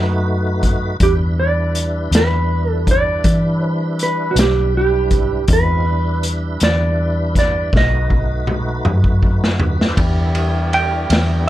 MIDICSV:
0, 0, Header, 1, 7, 480
1, 0, Start_track
1, 0, Key_signature, 1, "minor"
1, 0, Tempo, 747198
1, 643, Time_signature, 12, 3, 24, 8
1, 7382, End_track
2, 0, Start_track
2, 0, Title_t, "Electric slide guitar"
2, 0, Program_c, 0, 29
2, 6901, Note_on_c, 0, 79, 84
2, 7357, Note_off_c, 0, 79, 0
2, 7382, End_track
3, 0, Start_track
3, 0, Title_t, "Horn section"
3, 0, Program_c, 1, 61
3, 6407, Note_on_c, 1, 79, 78
3, 6408, Note_on_c, 1, 74, 75
3, 6409, Note_on_c, 1, 76, 70
3, 7382, Note_off_c, 1, 74, 0
3, 7382, Note_off_c, 1, 76, 0
3, 7382, Note_off_c, 1, 79, 0
3, 7382, End_track
4, 0, Start_track
4, 0, Title_t, "Clean electric guitar"
4, 0, Program_c, 2, 27
4, 662, Note_on_c, 2, 67, 100
4, 724, Note_off_c, 2, 67, 0
4, 897, Note_on_c, 2, 74, 89
4, 1344, Note_off_c, 2, 74, 0
4, 1390, Note_on_c, 2, 71, 89
4, 1743, Note_off_c, 2, 71, 0
4, 1743, Note_on_c, 2, 69, 89
4, 1868, Note_off_c, 2, 69, 0
4, 1870, Note_on_c, 2, 74, 95
4, 2339, Note_off_c, 2, 74, 0
4, 2339, Note_on_c, 2, 72, 95
4, 2551, Note_off_c, 2, 72, 0
4, 2588, Note_on_c, 2, 71, 76
4, 2769, Note_on_c, 2, 66, 56
4, 2777, Note_off_c, 2, 71, 0
4, 2808, Note_off_c, 2, 66, 0
4, 2831, Note_on_c, 2, 67, 80
4, 3041, Note_off_c, 2, 67, 0
4, 3066, Note_on_c, 2, 67, 83
4, 3509, Note_off_c, 2, 67, 0
4, 3553, Note_on_c, 2, 71, 82
4, 3992, Note_off_c, 2, 71, 0
4, 4263, Note_on_c, 2, 74, 90
4, 4708, Note_off_c, 2, 74, 0
4, 4746, Note_on_c, 2, 74, 84
4, 4981, Note_off_c, 2, 74, 0
4, 4993, Note_on_c, 2, 75, 89
4, 6152, Note_off_c, 2, 75, 0
4, 7382, End_track
5, 0, Start_track
5, 0, Title_t, "Tonewheel organ"
5, 0, Program_c, 3, 16
5, 0, Note_on_c, 3, 57, 67
5, 0, Note_on_c, 3, 63, 61
5, 0, Note_on_c, 3, 66, 64
5, 0, Note_on_c, 3, 71, 64
5, 622, Note_off_c, 3, 71, 0
5, 623, Note_off_c, 3, 57, 0
5, 623, Note_off_c, 3, 63, 0
5, 624, Note_off_c, 3, 66, 0
5, 648, Note_on_c, 3, 55, 65
5, 652, Note_on_c, 3, 64, 64
5, 655, Note_on_c, 3, 71, 65
5, 656, Note_on_c, 3, 62, 64
5, 3501, Note_off_c, 3, 55, 0
5, 3502, Note_off_c, 3, 64, 0
5, 3504, Note_off_c, 3, 62, 0
5, 3504, Note_off_c, 3, 71, 0
5, 3526, Note_on_c, 3, 63, 56
5, 3530, Note_on_c, 3, 56, 60
5, 3531, Note_on_c, 3, 65, 57
5, 3533, Note_on_c, 3, 60, 58
5, 3765, Note_off_c, 3, 63, 0
5, 3767, Note_off_c, 3, 56, 0
5, 3767, Note_off_c, 3, 65, 0
5, 3767, Note_on_c, 3, 71, 67
5, 3769, Note_off_c, 3, 60, 0
5, 3770, Note_on_c, 3, 64, 70
5, 3773, Note_on_c, 3, 55, 70
5, 3775, Note_on_c, 3, 62, 65
5, 4953, Note_off_c, 3, 71, 0
5, 4954, Note_off_c, 3, 64, 0
5, 4956, Note_off_c, 3, 55, 0
5, 4957, Note_off_c, 3, 62, 0
5, 4976, Note_on_c, 3, 57, 70
5, 4978, Note_on_c, 3, 63, 68
5, 4978, Note_on_c, 3, 66, 67
5, 4978, Note_on_c, 3, 71, 69
5, 6213, Note_off_c, 3, 57, 0
5, 6221, Note_on_c, 3, 57, 58
5, 6235, Note_on_c, 3, 59, 57
5, 6252, Note_on_c, 3, 60, 60
5, 6272, Note_on_c, 3, 62, 55
5, 6294, Note_on_c, 3, 64, 61
5, 6310, Note_on_c, 3, 65, 59
5, 6326, Note_on_c, 3, 67, 62
5, 6341, Note_on_c, 3, 69, 59
5, 6351, Note_off_c, 3, 71, 0
5, 6358, Note_on_c, 3, 71, 60
5, 6369, Note_off_c, 3, 57, 0
5, 6377, Note_off_c, 3, 59, 0
5, 6379, Note_on_c, 3, 72, 60
5, 6385, Note_off_c, 3, 60, 0
5, 6395, Note_off_c, 3, 62, 0
5, 6396, Note_off_c, 3, 63, 0
5, 6396, Note_off_c, 3, 66, 0
5, 6400, Note_on_c, 3, 74, 58
5, 6405, Note_off_c, 3, 64, 0
5, 6413, Note_on_c, 3, 64, 62
5, 6414, Note_off_c, 3, 65, 0
5, 6415, Note_on_c, 3, 59, 64
5, 6416, Note_on_c, 3, 62, 65
5, 6417, Note_on_c, 3, 55, 61
5, 6422, Note_off_c, 3, 67, 0
5, 6429, Note_off_c, 3, 69, 0
5, 6438, Note_off_c, 3, 71, 0
5, 6449, Note_off_c, 3, 72, 0
5, 6459, Note_off_c, 3, 74, 0
5, 7382, Note_off_c, 3, 55, 0
5, 7382, Note_off_c, 3, 59, 0
5, 7382, Note_off_c, 3, 62, 0
5, 7382, Note_off_c, 3, 64, 0
5, 7382, End_track
6, 0, Start_track
6, 0, Title_t, "Fingered electric bass"
6, 0, Program_c, 4, 33
6, 0, Note_on_c, 4, 42, 88
6, 617, Note_off_c, 4, 42, 0
6, 643, Note_on_c, 4, 40, 82
6, 1338, Note_off_c, 4, 40, 0
6, 1357, Note_on_c, 4, 40, 84
6, 2055, Note_off_c, 4, 40, 0
6, 2083, Note_on_c, 4, 52, 84
6, 2778, Note_off_c, 4, 52, 0
6, 2798, Note_on_c, 4, 35, 94
6, 3495, Note_off_c, 4, 35, 0
6, 3523, Note_on_c, 4, 40, 89
6, 4218, Note_off_c, 4, 40, 0
6, 4249, Note_on_c, 4, 40, 83
6, 4941, Note_off_c, 4, 40, 0
6, 4963, Note_on_c, 4, 35, 75
6, 5657, Note_off_c, 4, 35, 0
6, 5692, Note_on_c, 4, 42, 86
6, 6382, Note_off_c, 4, 42, 0
6, 6407, Note_on_c, 4, 40, 83
6, 7099, Note_off_c, 4, 40, 0
6, 7129, Note_on_c, 4, 40, 83
6, 7382, Note_off_c, 4, 40, 0
6, 7382, End_track
7, 0, Start_track
7, 0, Title_t, "Drums"
7, 403, Note_on_c, 9, 42, 55
7, 405, Note_on_c, 9, 36, 70
7, 468, Note_off_c, 9, 42, 0
7, 469, Note_off_c, 9, 36, 0
7, 643, Note_on_c, 9, 42, 73
7, 644, Note_on_c, 9, 36, 98
7, 707, Note_off_c, 9, 42, 0
7, 708, Note_off_c, 9, 36, 0
7, 1124, Note_on_c, 9, 42, 59
7, 1188, Note_off_c, 9, 42, 0
7, 1364, Note_on_c, 9, 42, 76
7, 1381, Note_on_c, 9, 38, 101
7, 1428, Note_off_c, 9, 42, 0
7, 1445, Note_off_c, 9, 38, 0
7, 1844, Note_on_c, 9, 36, 75
7, 1846, Note_on_c, 9, 42, 63
7, 1908, Note_off_c, 9, 36, 0
7, 1910, Note_off_c, 9, 42, 0
7, 2082, Note_on_c, 9, 42, 76
7, 2084, Note_on_c, 9, 36, 103
7, 2146, Note_off_c, 9, 42, 0
7, 2148, Note_off_c, 9, 36, 0
7, 2564, Note_on_c, 9, 42, 54
7, 2629, Note_off_c, 9, 42, 0
7, 2803, Note_on_c, 9, 42, 80
7, 2820, Note_on_c, 9, 38, 107
7, 2867, Note_off_c, 9, 42, 0
7, 2885, Note_off_c, 9, 38, 0
7, 3280, Note_on_c, 9, 42, 51
7, 3282, Note_on_c, 9, 36, 70
7, 3345, Note_off_c, 9, 42, 0
7, 3347, Note_off_c, 9, 36, 0
7, 3518, Note_on_c, 9, 42, 75
7, 3523, Note_on_c, 9, 36, 108
7, 3582, Note_off_c, 9, 42, 0
7, 3587, Note_off_c, 9, 36, 0
7, 4004, Note_on_c, 9, 42, 55
7, 4068, Note_off_c, 9, 42, 0
7, 4241, Note_on_c, 9, 42, 72
7, 4259, Note_on_c, 9, 38, 94
7, 4305, Note_off_c, 9, 42, 0
7, 4323, Note_off_c, 9, 38, 0
7, 4724, Note_on_c, 9, 36, 69
7, 4726, Note_on_c, 9, 42, 56
7, 4744, Note_on_c, 9, 38, 30
7, 4789, Note_off_c, 9, 36, 0
7, 4790, Note_off_c, 9, 42, 0
7, 4808, Note_off_c, 9, 38, 0
7, 4965, Note_on_c, 9, 36, 102
7, 4983, Note_on_c, 9, 38, 57
7, 5029, Note_off_c, 9, 36, 0
7, 5047, Note_off_c, 9, 38, 0
7, 5205, Note_on_c, 9, 36, 61
7, 5270, Note_off_c, 9, 36, 0
7, 5443, Note_on_c, 9, 47, 66
7, 5507, Note_off_c, 9, 47, 0
7, 5685, Note_on_c, 9, 45, 82
7, 5749, Note_off_c, 9, 45, 0
7, 5807, Note_on_c, 9, 36, 68
7, 5872, Note_off_c, 9, 36, 0
7, 5927, Note_on_c, 9, 36, 72
7, 5991, Note_off_c, 9, 36, 0
7, 6063, Note_on_c, 9, 38, 75
7, 6127, Note_off_c, 9, 38, 0
7, 6164, Note_on_c, 9, 43, 90
7, 6228, Note_off_c, 9, 43, 0
7, 6304, Note_on_c, 9, 38, 79
7, 6368, Note_off_c, 9, 38, 0
7, 6406, Note_on_c, 9, 36, 107
7, 6407, Note_on_c, 9, 51, 75
7, 6471, Note_off_c, 9, 36, 0
7, 6472, Note_off_c, 9, 51, 0
7, 6647, Note_on_c, 9, 51, 58
7, 6711, Note_off_c, 9, 51, 0
7, 6893, Note_on_c, 9, 51, 57
7, 6958, Note_off_c, 9, 51, 0
7, 7130, Note_on_c, 9, 51, 73
7, 7148, Note_on_c, 9, 38, 103
7, 7194, Note_off_c, 9, 51, 0
7, 7212, Note_off_c, 9, 38, 0
7, 7382, End_track
0, 0, End_of_file